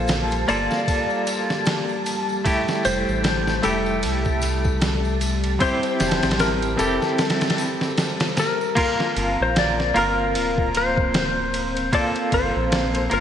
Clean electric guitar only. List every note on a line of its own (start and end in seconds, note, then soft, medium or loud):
0.00 0.44 A#3 loud
0.00 0.44 F4 medium
0.00 0.45 A4 loud
0.48 2.41 A#3 medium
0.48 2.42 F4 medium
0.48 2.42 A4 loud
2.45 3.59 A3 loud
2.45 3.60 E4 medium
2.45 3.60 G4 loud
3.63 5.56 A3 medium
3.63 5.57 E4 medium
3.63 5.58 G4 loud
5.60 6.75 C4 medium
5.60 6.76 E4 medium
5.60 6.76 G4 loud
6.78 8.72 C4 medium
6.78 8.73 E4 medium
6.78 8.73 G4 loud
8.75 9.91 A#3 loud
8.75 9.91 F4 medium
8.75 9.92 A#4 loud
9.94 11.88 A#3 medium
9.94 11.89 F4 medium
9.94 11.89 A#4 loud
11.93 13.07 A#3 loud
11.93 13.07 F4 medium
11.93 13.08 A4 loud
13.10 13.20 A#3 medium
13.10 13.20 F4 medium
13.10 13.20 A#4 loud